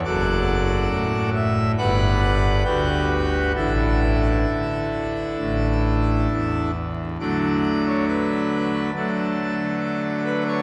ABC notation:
X:1
M:4/4
L:1/16
Q:1/4=68
K:D
V:1 name="Pipe organ"
[FAd]6 e2 [Bdf]4 [FGB]4 | [DEA]12- [DEA]2 z2 | d3 c B4 A6 B c |]
V:2 name="Pipe organ" clef=bass
[F,,,F,,]4 A,,4 [G,,,G,,]4 D,,4 | [A,,,A,,]4 D,4 [A,,,A,,]4 E,,4 | [D,F,A,D]8 [D,F,A,D]8 |]